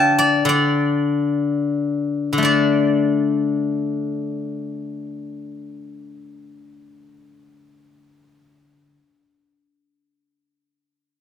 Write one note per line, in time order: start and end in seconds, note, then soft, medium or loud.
0.00 0.44 D3 medium
0.00 0.83 A4 medium
0.00 0.83 C5 medium
0.00 0.18 D5 loud
0.00 1.18 F5 medium
0.00 1.25 G5 medium
0.00 1.40 A5 loud
0.19 0.48 D5 medium
0.45 2.31 D3 medium
0.45 2.34 D5 medium
2.33 8.96 D3 soft
2.38 8.04 A3 soft
2.43 7.19 D4 soft
2.43 5.97 D5 medium